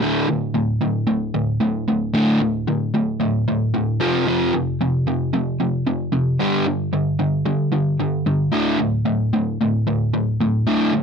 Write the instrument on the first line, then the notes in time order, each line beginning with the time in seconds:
overdriven electric guitar
0.02 D2 A2 D3
0.28 D2 A2
0.54 D2 A2
0.82 D2 A2
1.07 D2 A2
1.34 D2 A2
1.61 D2 A2
1.88 D2 A2
2.14 D2 A2 D3
2.41 D2 A2
2.67 D2 A2
2.94 D2 A2
3.20 D2 A2
3.48 D2 A2
3.74 D2 A2
4.00 F2 C3 F3
4.27 F2 C3 F3
4.54 F2 C3
4.81 F2 C3
5.07 F2 C3
5.34 F2 C3
5.60 F2 C3
5.87 F2 C3
6.12 F2 C3
6.40 G2 D3 G3
6.66 G2 D3
6.93 G2 D3
7.19 G2 D3
7.46 G2 D3
7.72 G2 D3
8.00 G2 D3
8.26 G2 D3
8.52 D2 A2 D3
8.79 D2 A2
9.05 D2 A2
9.33 D2 A2
9.61 D2 A2
9.87 D2 A2
10.14 D2 A2
10.40 D2 A2
10.67 D2 A2 D3
10.93 D2 A2